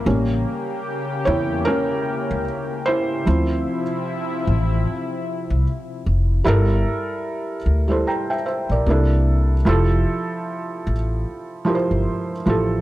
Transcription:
Already playing: analog synth pad A#3
0.06 upright bass A1, analog synth pad C#3 G4, felt piano G3 A#3 C#4
1.25 upright bass E2, felt piano E4 C#5
1.65 felt piano C#4 A#4
2.31 upright bass C#2
2.86 felt piano E4 C5
3.25 upright bass D2, analog synth pad C3 F3 E4, felt piano F3 C4 E4
4.47 upright bass A1
5.50 upright bass C2
6.06 upright bass F1
6.44 upright bass G1, felt piano G3 E4 A4 A#4
7.66 upright bass D2
7.88 felt piano G3 E4 A4 C5
8.07 felt piano G5 A#5
8.30 felt piano E5 G5
8.46 felt piano C5 E5
8.69 upright bass A#1, felt piano A#4 D5
8.86 upright bass C2, felt piano C3 A#3 D4 E4
8.91 felt piano A4
9.65 upright bass F1, felt piano F3 E4 G4 A4
10.87 upright bass A1
11.65 felt piano F3 E4 G4 A#4
11.75 felt piano C5
11.91 upright bass G1
12.46 upright bass A1, felt piano F3 E4 G4 A4

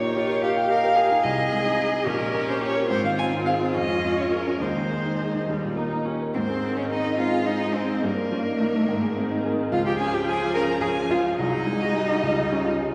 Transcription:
Already playing: grand piano A#1 A#2 A#3, viola G4, violin C#5
0.01 grand piano D#4
0.15 cello F4, grand piano G4
0.28 grand piano A#4
0.42 cello G4, grand piano D#5, violin F5
0.56 grand piano G5
0.69 cello A#4, grand piano D#5
0.84 grand piano A#4
0.96 grand piano G4, cello G#4
1.11 grand piano D#4
1.23 grand piano C2, viola G#4, violin D#5
1.38 grand piano C3
1.52 grand piano G#3
1.65 grand piano D#4
1.79 grand piano G#4
1.93 grand piano D#4
2.05 grand piano A#1, viola C#4, cello G4, violin A#4
2.21 grand piano A#2
2.34 grand piano A#3
2.48 grand piano C#4, violin C5
2.62 grand piano G4, violin C#5
2.76 grand piano A#4
2.88 grand piano G#2, viola C4, cello F4, violin C5
3.04 grand piano D#3, violin F5
3.18 grand piano C4, violin G#5
3.33 grand piano D#4
3.46 grand piano G#4, violin F5
3.61 grand piano C5
3.73 grand piano F2, viola C#4, violin D#5
3.89 grand piano F3
4.04 grand piano G#3
4.18 grand piano C#4, violin C#5
4.31 grand piano G#4, violin A#4
4.46 grand piano C#4
4.60 grand piano D#2, viola G#3, cello D#4, violin C5
4.77 grand piano D#3
4.91 grand piano G#3
5.05 grand piano D#4
5.20 grand piano G#4
5.35 grand piano D#4
5.47 grand piano D#2, viola G3
5.64 grand piano A#2
5.77 grand piano A#3, viola D#4
5.92 grand piano D#4
6.05 viola C#4, grand piano G4
6.22 grand piano A#4
6.34 grand piano G#2, viola D#3, cello C4, violin C5
6.41 cello A#3
6.47 cello C4, grand piano G#4
6.63 grand piano C4
6.77 cello C#4, grand piano D#4, violin C#5
6.90 cello D#4, grand piano G#4, violin D#5
7.05 grand piano D#4
7.18 viola G#3, grand piano C4, cello F4, violin F5
7.33 grand piano G#4
7.46 grand piano C4, cello D#4, violin D#5
7.62 grand piano D#4
7.74 cello C4, grand piano G#4, violin C5
7.89 grand piano D#4
8.02 grand piano G2, viola G3, cello A#3, violin A#4
8.17 grand piano A#4
8.31 viola F3, grand piano C#4
8.46 grand piano D#4
8.60 viola D#3, grand piano A#4
8.74 grand piano D#4
8.88 grand piano G#2, viola D#3
9.02 grand piano G#4
9.16 grand piano C4
9.30 grand piano D#4
9.44 grand piano G#4
9.59 grand piano D#4
9.72 grand piano C#2, viola F3, cello F4, violin F5
9.86 cello G4, grand piano G#4, violin G5
9.98 grand piano C#4, cello G#4, violin G#5
10.13 grand piano F4, cello G4, violin G5
10.27 cello G#4, grand piano G#4, violin G#5
10.42 grand piano F4
10.54 grand piano C#4, cello A#4, violin A#5
10.69 grand piano G#4
10.81 grand piano C#4, cello G#4, violin G#5
10.97 grand piano F4
11.10 cello F4, grand piano G#4, violin F5
11.25 grand piano F4
11.36 grand piano C2, viola F#3, cello D#4
11.40 violin D#5
11.53 grand piano G#4
11.66 viola G#3, grand piano D#4
11.81 grand piano F#4
11.94 viola G3, grand piano G#4
12.09 grand piano F#4
12.23 grand piano C#2
12.37 grand piano G#4
12.52 grand piano C#4
12.64 grand piano F4
12.79 grand piano G#4

